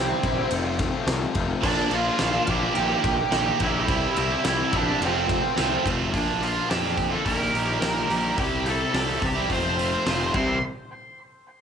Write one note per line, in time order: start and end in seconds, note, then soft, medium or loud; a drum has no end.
0.00 0.12 C2 medium
0.00 0.49 C3 medium
0.00 0.22 G3 medium
0.00 0.22 C4 loud
0.00 0.49 C4 medium
0.00 0.23 E4 medium
0.00 0.25 G4 loud
0.00 0.46 C5 medium
0.23 0.41 A#1 medium
0.23 0.50 G3 medium
0.23 0.38 C4 medium
0.23 0.37 E4 medium
0.23 0.35 G4 medium
0.23 kick medium
0.23 ride medium
0.36 0.51 C4 medium
0.36 0.50 E4 medium
0.36 0.49 G4 medium
0.50 0.86 F1 medium
0.50 0.93 F2 loud
0.50 0.94 C3 loud
0.50 0.65 F3 loud
0.50 0.65 A3 loud
0.50 0.63 C4 loud
0.50 0.63 F4 medium
0.50 ride loud
0.64 0.76 F3 medium
0.64 0.77 A3 medium
0.64 0.79 C4 medium
0.64 0.80 F4 medium
0.78 0.93 F3 medium
0.78 0.92 A3 medium
0.78 0.91 C4 medium
0.78 0.89 F4 medium
0.78 kick medium
0.78 snare soft
0.78 ride medium
0.90 1.05 F3 medium
0.90 1.06 A3 medium
0.90 1.06 C4 medium
0.90 1.07 F4 medium
1.05 1.25 C2 medium
1.05 1.61 F2 medium
1.05 1.60 C3 medium
1.05 1.32 F3 loud
1.05 1.34 A3 medium
1.05 1.34 C4 medium
1.05 1.35 F4 loud
1.05 snare loud
1.05 ride medium
1.33 1.53 F1 medium
1.33 1.48 F3 medium
1.33 1.47 A3 medium
1.33 1.46 C4 medium
1.33 1.45 F4 medium
1.33 kick medium
1.33 ride medium
1.46 1.60 F3 medium
1.46 1.62 A3 medium
1.46 1.61 C4 medium
1.46 1.61 F4 medium
1.61 1.81 A#1 loud
1.61 2.05 A#2 loud
1.61 2.05 F3 medium
1.61 1.79 A#3 loud
1.61 1.77 D4 loud
1.61 1.75 F4 loud
1.61 kick loud
1.61 crash loud
1.65 1.91 D4 medium
1.65 1.94 D5 medium
1.76 2.07 A#3 medium
1.76 2.05 D4 medium
1.76 2.04 F4 medium
1.90 2.08 A#1 medium
1.90 2.17 A#2 medium
1.90 2.18 F3 medium
1.90 2.19 A#3 medium
1.90 2.20 D4 medium
1.90 2.45 F4 medium
1.90 ride medium
1.94 2.50 F5 loud
2.05 2.19 A#3 medium
2.05 2.20 D4 medium
2.05 2.21 F4 medium
2.18 2.37 A#1 medium
2.18 2.73 A#2 medium
2.18 2.46 F3 loud
2.18 2.47 A#3 loud
2.18 2.48 D4 loud
2.18 2.49 F4 loud
2.18 snare loud
2.18 ride loud
2.32 2.46 F3 medium
2.32 2.47 A#3 medium
2.32 2.48 D4 medium
2.46 2.65 A#1 medium
2.46 2.71 A#2 medium
2.46 2.74 F3 medium
2.46 2.62 A#3 medium
2.46 2.61 D4 medium
2.46 3.57 G4 medium
2.46 kick medium
2.46 ride medium
2.50 2.59 F4 medium
2.50 3.63 G5 medium
2.61 2.73 F3 medium
2.61 2.75 A#3 medium
2.61 2.75 D4 medium
2.61 2.74 F4 medium
2.74 2.94 A#1 medium
2.74 3.17 A#2 loud
2.74 3.00 D#3 loud
2.74 2.89 A#3 medium
2.74 2.88 D#4 loud
2.74 2.86 G4 loud
2.74 ride loud
2.87 3.01 A#3 medium
2.87 3.02 D#4 medium
2.87 3.03 G4 medium
3.01 3.22 A#1 medium
3.01 3.29 D#3 medium
3.01 3.18 A#3 medium
3.01 3.17 D#4 medium
3.01 3.16 G4 medium
3.01 muted distorted electric guitar stroke medium
3.01 kick loud
3.01 ride medium
3.17 3.29 A#3 medium
3.17 3.31 D#4 medium
3.17 3.32 G4 medium
3.29 3.50 A#1 loud
3.29 3.85 A#2 loud
3.29 3.58 D#3 loud
3.29 3.59 A#3 loud
3.29 3.60 D#4 loud
3.29 snare loud
3.29 ride loud
3.33 3.61 G4 loud
3.46 3.59 A#3 medium
3.46 3.60 D#4 medium
3.46 3.61 G4 medium
3.59 3.88 A#1 medium
3.59 3.86 D#3 medium
3.59 3.75 A#3 medium
3.59 3.73 D#4 medium
3.59 4.14 E4 medium
3.59 3.73 G4 loud
3.59 kick medium
3.59 ride medium
3.64 4.18 E5 loud
3.74 3.87 A#3 medium
3.74 3.87 D#4 medium
3.74 3.87 G4 medium
3.86 4.05 C2 loud
3.86 4.30 C3 loud
3.86 4.30 G3 loud
3.86 4.03 C4 loud
3.86 4.01 E4 loud
3.86 4.00 G4 loud
3.86 kick loud
3.86 ride loud
4.01 4.32 C4 medium
4.01 4.30 E4 medium
4.01 4.28 G4 medium
4.16 4.34 C2 medium
4.16 4.43 G3 medium
4.16 4.44 C4 medium
4.16 4.45 E4 medium
4.16 4.44 E4 medium
4.16 4.46 G4 medium
4.16 4.44 E5 medium
4.16 ride medium
4.30 4.44 C4 medium
4.30 4.45 E4 medium
4.30 4.45 G4 medium
4.43 4.62 C2 medium
4.43 4.98 C3 loud
4.43 4.70 G3 loud
4.43 4.71 C4 loud
4.43 4.73 E4 loud
4.43 4.72 E4 medium
4.43 4.73 G4 medium
4.43 snare loud
4.43 ride loud
4.47 4.75 E5 medium
4.59 4.72 C4 medium
4.59 4.73 E4 medium
4.59 4.74 G4 medium
4.71 4.90 A#1 medium
4.71 4.98 G3 medium
4.71 4.87 C4 medium
4.71 4.86 E4 medium
4.71 4.85 G4 medium
4.71 kick medium
4.71 ride medium
4.76 5.01 D4 medium
4.76 5.04 D5 medium
4.86 4.99 C4 medium
4.86 4.99 E4 medium
4.86 4.99 G4 medium
4.98 5.36 F1 medium
4.98 5.42 F2 loud
4.98 5.42 C3 loud
4.98 5.14 F3 medium
4.98 5.13 A3 loud
4.98 5.13 C4 loud
4.98 5.11 F4 loud
4.98 ride loud
5.05 5.83 C4 medium
5.05 5.83 C5 medium
5.12 5.25 F3 medium
5.12 5.27 A3 medium
5.12 5.28 C4 medium
5.12 5.29 F4 medium
5.26 5.43 F3 medium
5.26 5.42 A3 medium
5.26 5.41 C4 medium
5.26 muted distorted electric guitar stroke medium
5.26 kick medium
5.26 ride medium
5.30 5.40 F4 medium
5.41 5.56 F3 medium
5.41 5.56 A3 medium
5.41 5.57 C4 medium
5.41 5.57 F4 medium
5.55 5.75 C2 medium
5.55 6.11 F2 medium
5.55 6.11 C3 medium
5.55 5.82 F3 medium
5.55 5.83 A3 loud
5.55 5.84 C4 loud
5.55 5.86 F4 medium
5.55 snare loud
5.55 ride loud
5.70 5.83 F3 medium
5.70 5.84 A3 medium
5.70 5.86 C4 medium
5.70 5.86 F4 medium
5.84 6.13 F1 medium
5.84 6.00 F3 medium
5.84 6.00 A3 medium
5.84 5.98 C4 medium
5.84 5.97 F4 medium
5.84 kick medium
5.84 ride medium
5.98 6.12 F3 medium
5.98 6.12 A3 medium
5.98 6.12 C4 medium
5.98 6.11 F4 medium
6.12 6.58 A#1 medium
6.12 6.67 A#2 medium
6.12 6.37 F3 medium
6.12 6.38 A#3 medium
6.12 6.40 D4 loud
6.12 6.40 F4 loud
6.12 kick loud
6.12 open hi-hat medium
6.16 6.41 D4 medium
6.16 6.44 D5 medium
6.38 6.68 F3 medium
6.38 6.69 A#3 medium
6.38 6.70 D4 medium
6.38 6.69 F4 medium
6.43 6.69 F4 soft
6.43 6.70 F5 medium
6.43 open hi-hat medium
6.68 7.15 F2 medium
6.68 7.11 A#2 medium
6.68 6.97 F3 medium
6.68 6.84 A#3 medium
6.68 6.83 D4 medium
6.68 6.81 F4 loud
6.68 7.09 G4 medium
6.68 7.09 G5 medium
6.68 snare loud
6.68 open hi-hat medium
6.82 6.97 A#3 medium
6.82 6.97 D4 medium
6.82 6.97 F4 medium
6.96 7.26 D3 medium
6.96 muted distorted electric guitar stroke soft
6.96 muted overdriven electric guitar stroke soft
6.96 kick medium
6.96 open hi-hat medium
7.11 7.25 A#3 soft
7.11 7.24 D4 medium
7.11 7.23 F4 medium
7.11 7.25 A4 medium
7.11 7.25 A5 medium
7.26 7.48 A#1 medium
7.26 7.68 A#2 medium
7.26 7.52 D#3 medium
7.26 7.41 A#3 medium
7.26 7.39 D#4 loud
7.26 7.38 G4 loud
7.26 8.34 A#4 medium
7.26 8.42 A#5 medium
7.26 kick medium
7.26 open hi-hat medium
7.39 7.54 A#3 medium
7.39 7.55 D#4 medium
7.39 7.56 G4 medium
7.49 7.79 D#3 medium
7.49 7.80 D#4 medium
7.54 7.76 A#1 medium
7.54 7.79 D#3 medium
7.54 8.09 G3 medium
7.54 7.69 A#3 medium
7.54 7.67 D#4 medium
7.54 7.65 G4 medium
7.54 open hi-hat medium
7.67 7.80 A#3 medium
7.67 7.81 D#4 medium
7.67 7.81 G4 medium
7.79 8.04 A#1 medium
7.79 8.35 A#2 medium
7.79 8.07 D#3 medium
7.79 8.08 A#3 medium
7.79 8.09 D#4 medium
7.79 8.09 G4 loud
7.79 snare loud
7.79 open hi-hat medium
7.93 8.06 A#3 medium
7.93 8.06 D#4 medium
7.93 8.07 G4 medium
8.08 8.31 A#1 medium
8.08 8.35 D#3 medium
8.08 8.38 G3 medium
8.08 8.25 A#3 medium
8.08 8.23 D#4 medium
8.08 8.22 G4 medium
8.08 open hi-hat medium
8.23 8.37 A#3 medium
8.23 8.36 D#4 medium
8.23 8.36 G4 medium
8.36 8.83 C2 medium
8.36 8.91 C3 loud
8.36 8.64 G3 medium
8.36 8.65 C4 medium
8.36 8.66 E4 loud
8.36 8.65 G4 medium
8.36 8.67 G4 loud
8.36 kick loud
8.36 open hi-hat medium
8.41 8.69 G5 medium
8.65 8.93 G3 medium
8.65 8.93 C4 medium
8.65 8.94 E4 medium
8.65 8.95 G4 medium
8.65 8.93 A4 medium
8.65 open hi-hat medium
8.69 8.96 A5 medium
8.92 9.16 C2 medium
8.92 9.35 C3 medium
8.92 9.19 G3 loud
8.92 9.09 C4 medium
8.92 9.08 E4 medium
8.92 9.06 G4 medium
8.92 9.21 A4 medium
8.92 snare loud
8.92 open hi-hat medium
8.97 9.25 A5 medium
9.07 9.19 C4 medium
9.07 9.20 E4 medium
9.07 9.20 G4 medium
9.20 9.44 C2 medium
9.20 9.50 E3 medium
9.20 muted overdriven electric guitar stroke soft
9.20 muted distorted electric guitar stroke soft
9.20 kick medium
9.20 open hi-hat medium
9.25 9.50 G4 medium
9.25 9.51 G5 medium
9.34 9.49 C4 medium
9.34 9.48 E4 medium
9.34 9.48 G4 medium
9.48 9.95 F1 medium
9.48 9.91 F2 medium
9.48 9.92 C3 loud
9.48 9.65 F3 loud
9.48 9.64 A3 loud
9.48 9.63 C4 loud
9.48 9.61 F4 loud
9.48 kick medium
9.48 open hi-hat medium
9.52 10.31 C5 medium
9.52 10.32 C6 medium
9.63 9.76 F3 medium
9.63 9.77 A3 medium
9.63 9.78 C4 medium
9.63 9.79 F4 medium
9.77 9.94 F3 medium
9.77 9.92 A3 medium
9.77 9.91 C4 medium
9.77 9.90 F4 medium
9.77 open hi-hat medium
9.91 10.05 F3 medium
9.91 10.05 A3 medium
9.91 10.06 C4 medium
9.91 10.07 F4 medium
10.04 10.29 F1 loud
10.04 10.33 F2 loud
10.04 10.32 C3 medium
10.04 10.34 F3 medium
10.04 10.34 A3 medium
10.04 10.34 C4 medium
10.04 10.35 F4 loud
10.04 snare loud
10.04 open hi-hat medium
10.19 10.33 F3 medium
10.19 10.34 A3 medium
10.19 10.33 C4 medium
10.19 10.34 F4 medium
10.33 10.60 C2 medium
10.33 10.56 C3 loud
10.33 10.58 E3 medium
10.33 10.57 G3 loud
10.33 10.57 C4 loud
10.33 10.58 E4 loud
10.33 10.61 C6 medium
10.33 kick loud
10.33 crash medium